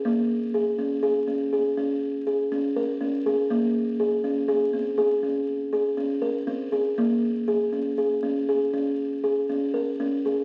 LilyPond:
\new Staff \with { instrumentName = "Kalimba" } { \time 7/4 \key bes \minor \tempo 4 = 121 bes4 aes'8 des'8 aes'8 des'8 aes'8 des'4 aes'8 des'8 bes'8 des'8 aes'8 | bes4 aes'8 des'8 aes'8 c'8 aes'8 des'4 aes'8 des'8 bes'8 c'8 aes'8 | bes4 aes'8 des'8 aes'8 des'8 aes'8 des'4 aes'8 des'8 bes'8 des'8 aes'8 | }